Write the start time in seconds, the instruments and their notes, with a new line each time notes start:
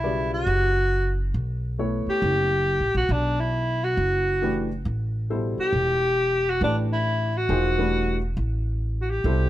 Already playing: upright bass B1, alto saxophone E4
0.03 upright piano C#3 G3 F#4 B4 D5
0.33 alto saxophone F#4
0.46 upright bass F#1
1.34 upright bass B1
1.79 upright piano A3 B3 E4 A4 C#5
2.06 alto saxophone G4, muted upright bass stroke
2.22 upright bass F#1
2.80 upright bass A1
2.95 upright bass A#1, alto saxophone F#4
3.09 upright bass B1, alto saxophone D4
3.40 alto saxophone E4
3.84 alto saxophone F#4
3.97 upright bass F#1
4.42 upright piano E3 A3 D4 G4 B4
4.85 upright bass A1
5.30 upright piano B2 G3 E4 A4 C5
5.58 alto saxophone G4, muted upright bass stroke
5.73 upright bass E1
6.50 alto saxophone F#4
6.61 upright bass A1, upright piano E3 A3 D4 G4 B4, alto saxophone D4
6.93 alto saxophone E4
7.37 alto saxophone F#4
7.49 upright bass E1, upright piano F3 A#3 D#4 G#4 C5
7.78 upright piano E3 G3 A3 D4 B4
8.37 upright bass A1
9.01 alto saxophone F#4
9.10 alto saxophone G4
9.24 upright bass C2, upright piano B2 G3 E4 A4 C5